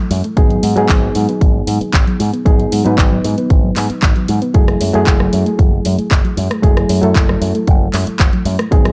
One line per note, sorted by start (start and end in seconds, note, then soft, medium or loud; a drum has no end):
0.00 0.34 F#3 medium
0.00 0.34 A3 medium
0.00 0.34 E4 medium
0.00 0.34 A4 medium
0.11 0.21 F#2 medium
0.11 0.16 G#3 medium
0.11 open hi-hat medium
0.24 0.29 A3 loud
0.24 closed hi-hat medium
0.36 0.56 G#1 medium
0.36 0.46 D#3 medium
0.36 0.73 F#3 medium
0.36 0.73 B3 medium
0.36 0.73 D#4 medium
0.36 0.74 G#4 loud
0.36 kick loud
0.36 closed hi-hat medium
0.50 0.59 F#3 medium
0.50 closed hi-hat soft
0.63 0.73 G#2 medium
0.63 0.72 G#3 medium
0.63 open hi-hat loud
0.76 0.86 G#2 medium
0.76 2.42 F#3 loud
0.76 2.43 B3 medium
0.76 2.43 D#4 medium
0.76 2.43 G#4 loud
0.76 closed hi-hat soft
0.89 1.09 G#1 loud
0.89 0.98 D#3 medium
0.89 kick loud
0.89 clap loud
0.89 closed hi-hat medium
1.02 1.11 F#3 loud
1.15 1.25 G#2 medium
1.15 1.21 G#3 medium
1.15 open hi-hat medium
1.29 1.34 B3 medium
1.29 closed hi-hat soft
1.41 1.61 G#1 loud
1.41 1.50 D#3 medium
1.41 kick loud
1.41 closed hi-hat medium
1.55 1.63 F#3 medium
1.67 1.77 G#2 medium
1.67 1.76 G#3 medium
1.67 open hi-hat loud
1.81 1.89 B3 medium
1.81 muted picked electric bass stroke soft
1.81 closed hi-hat soft
1.93 2.03 G#1 medium
1.93 2.02 D#3 medium
1.93 kick loud
1.93 clap loud
1.93 closed hi-hat medium
2.07 2.15 F#3 loud
2.07 closed hi-hat soft
2.20 2.30 G#2 medium
2.20 2.25 G#3 medium
2.20 open hi-hat medium
2.33 2.38 B3 medium
2.33 closed hi-hat soft
2.45 2.65 G#1 loud
2.45 2.55 D#3 medium
2.45 2.82 F#3 medium
2.45 2.82 B3 medium
2.45 2.82 D#4 medium
2.45 2.82 G#4 medium
2.45 kick loud
2.45 closed hi-hat medium
2.59 2.68 F#3 medium
2.59 closed hi-hat soft
2.72 2.82 G#2 medium
2.72 2.81 G#3 medium
2.72 open hi-hat loud
2.85 2.95 G#2 medium
2.85 4.51 F#3 medium
2.85 4.52 B3 medium
2.85 2.94 B3 medium
2.85 4.52 D#4 medium
2.85 4.52 B4 loud
2.85 closed hi-hat soft
2.98 3.17 G#1 loud
2.98 3.07 D#3 medium
2.98 kick loud
2.98 clap loud
2.98 closed hi-hat medium
3.12 3.20 F#3 loud
3.24 3.34 G#2 medium
3.24 3.30 G#3 medium
3.24 open hi-hat medium
3.38 3.43 B3 loud
3.38 closed hi-hat soft
3.50 3.70 G#1 loud
3.50 3.59 D#3 medium
3.50 kick loud
3.50 closed hi-hat medium
3.64 3.72 F#3 medium
3.76 3.86 G#2 medium
3.76 3.85 G#3 medium
3.76 clap medium
3.76 open hi-hat loud
3.90 3.98 B3 medium
3.90 muted picked electric bass stroke soft
3.90 closed hi-hat soft
4.02 4.12 G#1 medium
4.02 4.11 D#3 medium
4.02 kick loud
4.02 clap loud
4.02 closed hi-hat medium
4.16 4.24 F#3 loud
4.16 closed hi-hat soft
4.28 4.38 G#2 medium
4.28 4.34 G#3 medium
4.28 open hi-hat medium
4.42 4.47 B3 loud
4.42 closed hi-hat soft
4.54 4.74 F#1 medium
4.54 4.63 E3 medium
4.54 4.91 F#3 medium
4.54 4.91 A3 medium
4.54 4.91 E4 medium
4.54 4.91 G#4 medium
4.54 kick loud
4.54 closed hi-hat medium
4.68 4.76 F#3 medium
4.68 cross-stick medium
4.68 closed hi-hat soft
4.80 4.91 F#2 medium
4.80 4.89 G#3 medium
4.80 open hi-hat loud
4.93 5.04 F#2 medium
4.93 6.60 F#3 loud
4.93 6.60 A3 medium
4.93 5.02 A3 medium
4.93 6.61 E4 medium
4.93 6.61 G#4 loud
4.93 closed hi-hat soft
5.07 5.26 F#1 loud
5.07 5.16 E3 medium
5.07 kick loud
5.07 clap loud
5.07 closed hi-hat medium
5.20 5.28 F#3 loud
5.20 cross-stick medium
5.33 5.43 F#2 medium
5.33 5.38 G#3 medium
5.33 open hi-hat medium
5.46 5.51 A3 loud
5.46 closed hi-hat soft
5.58 5.78 F#1 loud
5.58 5.68 E3 medium
5.58 kick loud
5.58 closed hi-hat medium
5.72 5.80 F#3 medium
5.85 5.95 F#2 medium
5.85 5.94 G#3 medium
5.85 open hi-hat loud
5.98 6.07 A3 medium
5.98 muted picked electric bass stroke soft
5.98 closed hi-hat soft
6.11 6.21 F#1 medium
6.11 6.20 E3 medium
6.11 kick loud
6.11 clap loud
6.11 closed hi-hat medium
6.24 6.33 F#3 loud
6.24 closed hi-hat soft
6.37 6.47 F#2 medium
6.37 6.42 G#3 medium
6.37 open hi-hat medium
6.50 6.55 A3 loud
6.50 cross-stick medium
6.50 closed hi-hat soft
6.63 6.83 F#1 loud
6.63 6.72 E3 medium
6.63 6.99 F#3 medium
6.63 6.99 A3 medium
6.63 7.00 E4 medium
6.63 7.00 G#4 loud
6.63 kick loud
6.63 closed hi-hat medium
6.77 6.85 F#3 medium
6.77 cross-stick medium
6.77 closed hi-hat soft
6.89 6.99 F#2 medium
6.89 6.98 G#3 medium
6.89 open hi-hat loud
7.02 7.12 F#2 medium
7.02 8.68 F#3 medium
7.02 8.69 A3 medium
7.02 7.11 A3 medium
7.02 8.69 E4 medium
7.02 8.69 A4 loud
7.02 closed hi-hat soft
7.15 7.35 F#1 loud
7.15 7.24 E3 medium
7.15 kick loud
7.15 clap loud
7.15 closed hi-hat medium
7.29 7.37 F#3 loud
7.29 cross-stick medium
7.41 7.51 F#2 medium
7.41 7.47 G#3 medium
7.41 open hi-hat medium
7.55 7.60 A3 medium
7.55 closed hi-hat medium
7.67 7.87 F#1 loud
7.67 7.76 E3 medium
7.67 kick loud
7.67 closed hi-hat medium
7.81 7.89 F#3 medium
7.94 8.04 F#2 medium
7.94 8.03 G#3 medium
7.94 clap medium
7.94 open hi-hat medium
8.07 8.15 A3 medium
8.07 muted picked electric bass stroke soft
8.07 closed hi-hat soft
8.20 8.30 F#1 medium
8.20 8.29 E3 medium
8.20 kick loud
8.20 clap loud
8.20 closed hi-hat medium
8.33 8.41 F#3 loud
8.33 closed hi-hat soft
8.45 8.55 F#2 medium
8.45 8.51 G#3 medium
8.45 open hi-hat medium
8.59 8.64 A3 loud
8.59 cross-stick medium
8.59 closed hi-hat soft
8.71 8.91 G#1 loud
8.71 8.81 D#3 medium
8.71 8.92 F#3 medium
8.71 8.92 B3 medium
8.71 8.92 D#4 medium
8.71 8.92 G#4 loud
8.71 kick loud
8.71 closed hi-hat medium
8.85 8.92 F#3 medium
8.85 cross-stick medium
8.85 closed hi-hat soft